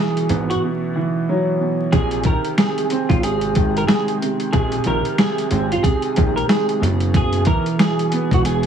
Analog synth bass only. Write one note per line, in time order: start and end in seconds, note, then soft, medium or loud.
0.30 0.55 G#1 medium
1.93 2.34 A#1 loud
3.10 3.84 G#1 medium
4.53 4.79 A#1 loud
4.86 5.02 A#1 medium
5.51 5.77 G#1 medium
6.17 6.42 A#1 loud
6.82 7.48 F#1 loud
8.31 8.66 E1 medium